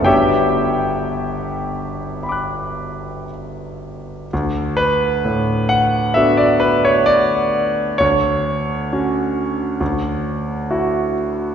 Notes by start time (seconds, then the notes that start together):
0.01 G1 B3 D4 F#4 C#5 G5
0.06 G4 E5
2.23 B5
2.29 D6 F#6
4.33 D2
4.77 B4
5.25 A2
5.69 F#5
6.14 A3 B3 D4 F#4 E5
6.37 D5
6.60 B4
6.85 C#5
7.06 D5
7.98 D2 C#5
8.93 C#4 F#4
9.80 D2
10.71 E4 F#4